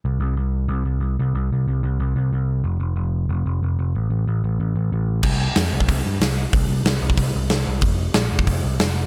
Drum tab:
CC |----------------|----------------|----------------|----------------|
HH |----------------|----------------|----------------|----------------|
SD |----------------|----------------|----------------|----------------|
BD |----------------|----------------|----------------|----------------|

CC |x---------------|----------------|----------------|
HH |----o---o---o---|o---o---o---o---|o---o---o---o---|
SD |----o-------o---|----o-------o---|----o-------o---|
BD |o------oo-------|o------oo-------|o------oo-------|